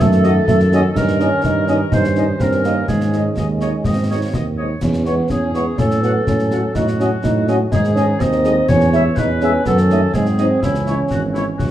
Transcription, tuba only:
0, 0, Header, 1, 2, 480
1, 0, Start_track
1, 0, Key_signature, 4, "minor"
1, 0, Tempo, 483092
1, 956, Time_signature, 2, 2, 24, 8
1, 11634, End_track
2, 0, Start_track
2, 0, Title_t, "Tuba"
2, 0, Program_c, 0, 58
2, 0, Note_on_c, 0, 42, 76
2, 389, Note_off_c, 0, 42, 0
2, 473, Note_on_c, 0, 42, 73
2, 874, Note_off_c, 0, 42, 0
2, 949, Note_on_c, 0, 43, 70
2, 1352, Note_off_c, 0, 43, 0
2, 1428, Note_on_c, 0, 43, 61
2, 1832, Note_off_c, 0, 43, 0
2, 1914, Note_on_c, 0, 43, 66
2, 2315, Note_off_c, 0, 43, 0
2, 2389, Note_on_c, 0, 43, 55
2, 2793, Note_off_c, 0, 43, 0
2, 2870, Note_on_c, 0, 44, 59
2, 3273, Note_off_c, 0, 44, 0
2, 3349, Note_on_c, 0, 39, 53
2, 3700, Note_off_c, 0, 39, 0
2, 3821, Note_on_c, 0, 44, 57
2, 4229, Note_off_c, 0, 44, 0
2, 4309, Note_on_c, 0, 39, 50
2, 4713, Note_off_c, 0, 39, 0
2, 4784, Note_on_c, 0, 40, 59
2, 5190, Note_off_c, 0, 40, 0
2, 5265, Note_on_c, 0, 40, 54
2, 5671, Note_off_c, 0, 40, 0
2, 5754, Note_on_c, 0, 45, 61
2, 6156, Note_off_c, 0, 45, 0
2, 6232, Note_on_c, 0, 45, 49
2, 6634, Note_off_c, 0, 45, 0
2, 6708, Note_on_c, 0, 45, 55
2, 7112, Note_off_c, 0, 45, 0
2, 7196, Note_on_c, 0, 45, 59
2, 7596, Note_off_c, 0, 45, 0
2, 7678, Note_on_c, 0, 44, 68
2, 8077, Note_off_c, 0, 44, 0
2, 8152, Note_on_c, 0, 39, 65
2, 8554, Note_off_c, 0, 39, 0
2, 8636, Note_on_c, 0, 40, 77
2, 9035, Note_off_c, 0, 40, 0
2, 9115, Note_on_c, 0, 40, 67
2, 9515, Note_off_c, 0, 40, 0
2, 9601, Note_on_c, 0, 42, 73
2, 9998, Note_off_c, 0, 42, 0
2, 10077, Note_on_c, 0, 44, 66
2, 10476, Note_off_c, 0, 44, 0
2, 10556, Note_on_c, 0, 37, 56
2, 10955, Note_off_c, 0, 37, 0
2, 11035, Note_on_c, 0, 32, 52
2, 11434, Note_off_c, 0, 32, 0
2, 11517, Note_on_c, 0, 37, 55
2, 11634, Note_off_c, 0, 37, 0
2, 11634, End_track
0, 0, End_of_file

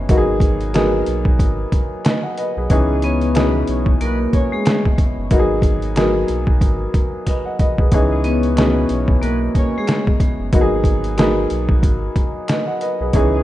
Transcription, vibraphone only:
0, 0, Header, 1, 2, 480
1, 0, Start_track
1, 0, Tempo, 652174
1, 69, Time_signature, 4, 2, 24, 8
1, 9884, End_track
2, 0, Start_track
2, 0, Title_t, "Vibraphone"
2, 0, Program_c, 0, 11
2, 2237, Note_on_c, 0, 59, 84
2, 2244, Note_on_c, 0, 71, 64
2, 2924, Note_off_c, 0, 59, 0
2, 2927, Note_off_c, 0, 71, 0
2, 2950, Note_on_c, 0, 58, 74
2, 2955, Note_on_c, 0, 70, 65
2, 3307, Note_off_c, 0, 58, 0
2, 3309, Note_off_c, 0, 70, 0
2, 3330, Note_on_c, 0, 56, 75
2, 3336, Note_on_c, 0, 68, 61
2, 3546, Note_off_c, 0, 56, 0
2, 3549, Note_off_c, 0, 68, 0
2, 6066, Note_on_c, 0, 59, 79
2, 6072, Note_on_c, 0, 71, 61
2, 6758, Note_off_c, 0, 59, 0
2, 6761, Note_off_c, 0, 71, 0
2, 6782, Note_on_c, 0, 58, 76
2, 6787, Note_on_c, 0, 70, 60
2, 7142, Note_off_c, 0, 58, 0
2, 7145, Note_off_c, 0, 70, 0
2, 7196, Note_on_c, 0, 56, 73
2, 7202, Note_on_c, 0, 68, 64
2, 7400, Note_off_c, 0, 56, 0
2, 7403, Note_off_c, 0, 68, 0
2, 9884, End_track
0, 0, End_of_file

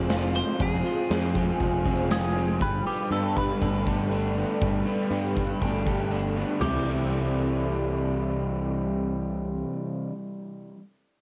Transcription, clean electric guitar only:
0, 0, Header, 1, 2, 480
1, 0, Start_track
1, 0, Key_signature, 0, "major"
1, 0, Tempo, 500417
1, 574, Time_signature, 4, 2, 24, 8
1, 10754, End_track
2, 0, Start_track
2, 0, Title_t, "Clean electric guitar"
2, 0, Program_c, 0, 27
2, 0, Note_on_c, 0, 74, 96
2, 342, Note_off_c, 0, 74, 0
2, 346, Note_on_c, 0, 72, 82
2, 587, Note_off_c, 0, 72, 0
2, 593, Note_on_c, 0, 68, 79
2, 2019, Note_off_c, 0, 68, 0
2, 2031, Note_on_c, 0, 68, 85
2, 2510, Note_off_c, 0, 68, 0
2, 2514, Note_on_c, 0, 71, 87
2, 2746, Note_off_c, 0, 71, 0
2, 2750, Note_on_c, 0, 67, 75
2, 2989, Note_off_c, 0, 67, 0
2, 2992, Note_on_c, 0, 69, 75
2, 3233, Note_off_c, 0, 69, 0
2, 3239, Note_on_c, 0, 71, 72
2, 5834, Note_off_c, 0, 71, 0
2, 6341, Note_on_c, 0, 67, 72
2, 9243, Note_off_c, 0, 67, 0
2, 10754, End_track
0, 0, End_of_file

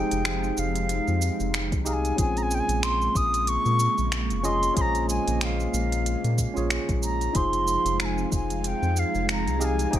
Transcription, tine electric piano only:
0, 0, Header, 1, 2, 480
1, 0, Start_track
1, 0, Key_signature, -4, "minor"
1, 0, Tempo, 645161
1, 1625, Time_signature, 4, 2, 24, 8
1, 7436, End_track
2, 0, Start_track
2, 0, Title_t, "Tine electric piano"
2, 0, Program_c, 0, 4
2, 0, Control_c, 0, 64, 127
2, 0, Note_on_c, 0, 63, 85
2, 0, Note_on_c, 0, 67, 78
2, 0, Note_on_c, 0, 68, 84
2, 0, Note_on_c, 0, 72, 89
2, 0, Note_on_c, 0, 77, 95
2, 1352, Note_off_c, 0, 63, 0
2, 1358, Note_off_c, 0, 67, 0
2, 1364, Note_off_c, 0, 68, 0
2, 1369, Note_off_c, 0, 72, 0
2, 1374, Note_on_c, 0, 63, 91
2, 1378, Note_on_c, 0, 67, 81
2, 1387, Note_on_c, 0, 68, 82
2, 1391, Note_off_c, 0, 77, 0
2, 1391, Note_on_c, 0, 77, 92
2, 1594, Note_off_c, 0, 63, 0
2, 1597, Note_off_c, 0, 67, 0
2, 1601, Note_off_c, 0, 68, 0
2, 1603, Note_off_c, 0, 77, 0
2, 1609, Note_on_c, 0, 61, 87
2, 1617, Note_on_c, 0, 65, 76
2, 1628, Note_on_c, 0, 68, 78
2, 1635, Control_c, 0, 64, 0
2, 1638, Note_on_c, 0, 60, 95
2, 1775, Control_c, 0, 64, 127
2, 3272, Note_off_c, 0, 61, 0
2, 3276, Note_off_c, 0, 65, 0
2, 3282, Note_off_c, 0, 68, 0
2, 3287, Note_off_c, 0, 60, 0
2, 3297, Note_on_c, 0, 61, 93
2, 3302, Note_on_c, 0, 65, 84
2, 3308, Note_on_c, 0, 68, 84
2, 3311, Note_on_c, 0, 75, 99
2, 3516, Note_off_c, 0, 61, 0
2, 3518, Note_off_c, 0, 65, 0
2, 3522, Note_off_c, 0, 68, 0
2, 3523, Note_off_c, 0, 75, 0
2, 3525, Note_on_c, 0, 61, 88
2, 3536, Note_on_c, 0, 65, 80
2, 3548, Note_on_c, 0, 68, 73
2, 3557, Note_on_c, 0, 72, 95
2, 4844, Note_off_c, 0, 61, 0
2, 4850, Note_off_c, 0, 65, 0
2, 4855, Note_off_c, 0, 68, 0
2, 4860, Note_off_c, 0, 72, 0
2, 4864, Note_on_c, 0, 61, 85
2, 4875, Note_on_c, 0, 65, 79
2, 4885, Note_on_c, 0, 68, 78
2, 4895, Note_on_c, 0, 73, 94
2, 5431, Note_off_c, 0, 61, 0
2, 5437, Note_off_c, 0, 65, 0
2, 5442, Note_off_c, 0, 68, 0
2, 5447, Note_off_c, 0, 73, 0
2, 5454, Note_on_c, 0, 63, 83
2, 5465, Note_on_c, 0, 65, 77
2, 5474, Note_on_c, 0, 68, 78
2, 5475, Control_c, 0, 64, 0
2, 5483, Note_on_c, 0, 72, 96
2, 5599, Control_c, 0, 64, 127
2, 7115, Note_off_c, 0, 63, 0
2, 7120, Note_off_c, 0, 65, 0
2, 7124, Note_off_c, 0, 68, 0
2, 7129, Note_off_c, 0, 72, 0
2, 7138, Note_on_c, 0, 63, 87
2, 7143, Note_on_c, 0, 67, 85
2, 7146, Note_on_c, 0, 68, 80
2, 7155, Note_on_c, 0, 77, 102
2, 7356, Note_off_c, 0, 63, 0
2, 7359, Note_off_c, 0, 67, 0
2, 7360, Note_off_c, 0, 68, 0
2, 7365, Note_off_c, 0, 77, 0
2, 7370, Note_on_c, 0, 63, 89
2, 7380, Note_on_c, 0, 67, 79
2, 7390, Note_on_c, 0, 68, 78
2, 7399, Note_on_c, 0, 72, 90
2, 7436, Note_off_c, 0, 63, 0
2, 7436, Note_off_c, 0, 67, 0
2, 7436, Note_off_c, 0, 68, 0
2, 7436, Note_off_c, 0, 72, 0
2, 7436, End_track
0, 0, End_of_file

